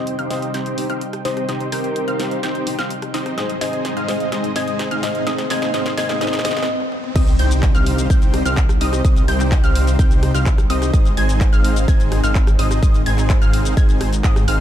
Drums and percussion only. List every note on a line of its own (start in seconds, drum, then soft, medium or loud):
0.07 closed hi-hat medium
0.19 closed hi-hat soft
0.31 snare medium
0.31 open hi-hat loud
0.42 closed hi-hat soft
0.54 snare soft
0.54 closed hi-hat medium
0.66 closed hi-hat soft
0.78 open hi-hat loud
0.90 closed hi-hat soft
1.01 closed hi-hat medium
1.13 cross-stick medium
1.13 closed hi-hat soft
1.25 snare medium
1.25 open hi-hat loud
1.37 cross-stick medium
1.37 closed hi-hat soft
1.49 snare medium
1.49 closed hi-hat medium
1.60 closed hi-hat soft
1.72 open hi-hat loud
1.84 closed hi-hat soft
1.96 closed hi-hat medium
2.08 closed hi-hat soft
2.20 snare medium
2.20 open hi-hat loud
2.31 closed hi-hat soft
2.43 snare medium
2.43 closed hi-hat medium
2.55 closed hi-hat soft
2.67 open hi-hat loud
2.79 snare medium
2.79 closed hi-hat soft
2.90 closed hi-hat medium
3.02 cross-stick medium
3.02 closed hi-hat soft
3.14 snare medium
3.14 open hi-hat loud
3.26 cross-stick medium
3.26 closed hi-hat soft
3.38 snare medium
3.38 closed hi-hat medium
3.50 closed hi-hat soft
3.61 snare medium
3.61 open hi-hat loud
3.73 closed hi-hat soft
3.85 snare medium
3.85 closed hi-hat medium
3.97 closed hi-hat soft
4.08 snare medium
4.08 open hi-hat loud
4.20 closed hi-hat soft
4.32 snare medium
4.32 closed hi-hat medium
4.44 closed hi-hat soft
4.56 snare medium
4.56 open hi-hat loud
4.68 closed hi-hat soft
4.79 snare medium
4.79 closed hi-hat medium
4.91 closed hi-hat soft
5.03 snare medium
5.03 open hi-hat loud
5.15 closed hi-hat soft
5.27 snare medium
5.27 closed hi-hat medium
5.38 snare medium
5.38 closed hi-hat soft
5.50 snare medium
5.50 open hi-hat loud
5.62 snare medium
5.62 closed hi-hat soft
5.74 snare medium
5.74 closed hi-hat medium
5.86 snare medium
5.86 closed hi-hat soft
5.98 snare loud
5.98 open hi-hat loud
6.09 snare medium
6.09 closed hi-hat soft
6.21 snare loud
6.21 closed hi-hat medium
6.27 snare medium
6.33 snare medium
6.33 closed hi-hat soft
6.39 snare medium
6.45 snare loud
6.45 open hi-hat loud
6.51 snare medium
6.57 snare medium
6.57 closed hi-hat soft
6.63 snare medium
6.80 high tom medium
6.92 mid tom medium
7.04 mid tom medium
7.16 kick loud
7.16 closed hi-hat medium
7.16 crash loud
7.16 shaker medium
7.27 closed hi-hat soft
7.27 shaker soft
7.39 open hi-hat loud
7.51 closed hi-hat soft
7.51 shaker medium
7.63 kick loud
7.63 clap loud
7.63 closed hi-hat medium
7.63 shaker medium
7.75 closed hi-hat soft
7.75 shaker soft
7.86 open hi-hat loud
7.98 closed hi-hat soft
7.98 shaker medium
8.10 kick loud
8.10 closed hi-hat medium
8.10 shaker medium
8.22 closed hi-hat soft
8.22 shaker soft
8.34 cross-stick medium
8.34 open hi-hat loud
8.46 closed hi-hat soft
8.46 shaker medium
8.57 kick loud
8.57 clap loud
8.57 closed hi-hat medium
8.57 shaker medium
8.69 cross-stick medium
8.69 closed hi-hat soft
8.69 shaker soft
8.81 open hi-hat loud
8.93 cross-stick medium
8.93 closed hi-hat soft
8.93 shaker medium
9.05 kick loud
9.05 closed hi-hat medium
9.05 shaker medium
9.16 closed hi-hat soft
9.16 shaker soft
9.28 open hi-hat loud
9.40 clap soft
9.40 closed hi-hat soft
9.40 shaker medium
9.52 kick loud
9.52 clap loud
9.52 closed hi-hat medium
9.52 shaker medium
9.64 closed hi-hat soft
9.64 shaker soft
9.75 open hi-hat loud
9.87 closed hi-hat soft
9.87 shaker medium
9.99 kick loud
9.99 closed hi-hat medium
9.99 shaker medium
10.11 closed hi-hat soft
10.11 shaker soft
10.23 cross-stick medium
10.23 open hi-hat loud
10.35 closed hi-hat soft
10.35 shaker medium
10.46 kick loud
10.46 clap loud
10.46 closed hi-hat medium
10.46 shaker medium
10.58 cross-stick medium
10.58 closed hi-hat soft
10.58 shaker soft
10.70 open hi-hat loud
10.82 cross-stick medium
10.82 closed hi-hat soft
10.82 shaker medium
10.94 kick loud
10.94 closed hi-hat medium
10.94 shaker medium
11.05 closed hi-hat soft
11.05 shaker soft
11.17 open hi-hat loud
11.29 closed hi-hat soft
11.29 shaker medium
11.41 kick loud
11.41 clap loud
11.41 closed hi-hat medium
11.41 shaker medium
11.53 closed hi-hat soft
11.53 shaker soft
11.64 open hi-hat loud
11.76 closed hi-hat soft
11.76 shaker medium
11.88 kick loud
11.88 closed hi-hat medium
11.88 shaker medium
12.00 closed hi-hat soft
12.00 shaker soft
12.12 cross-stick medium
12.12 open hi-hat loud
12.24 closed hi-hat soft
12.24 shaker medium
12.35 kick loud
12.35 clap loud
12.35 closed hi-hat medium
12.35 shaker soft
12.47 cross-stick medium
12.47 closed hi-hat soft
12.47 shaker soft
12.59 open hi-hat loud
12.71 cross-stick medium
12.71 closed hi-hat soft
12.71 shaker medium
12.83 kick loud
12.83 closed hi-hat medium
12.83 shaker medium
12.94 closed hi-hat soft
12.94 shaker soft
13.06 open hi-hat loud
13.18 clap soft
13.18 closed hi-hat soft
13.18 shaker medium
13.30 kick loud
13.30 clap loud
13.30 closed hi-hat medium
13.30 shaker medium
13.42 closed hi-hat soft
13.42 shaker soft
13.53 open hi-hat loud
13.65 closed hi-hat soft
13.65 shaker medium
13.77 kick loud
13.77 closed hi-hat medium
13.77 shaker medium
13.89 closed hi-hat soft
13.89 shaker soft
14.01 cross-stick medium
14.01 open hi-hat loud
14.13 closed hi-hat soft
14.13 shaker medium
14.24 kick loud
14.24 clap loud
14.24 closed hi-hat medium
14.24 shaker medium
14.36 cross-stick medium
14.36 closed hi-hat soft
14.36 shaker soft
14.48 open hi-hat loud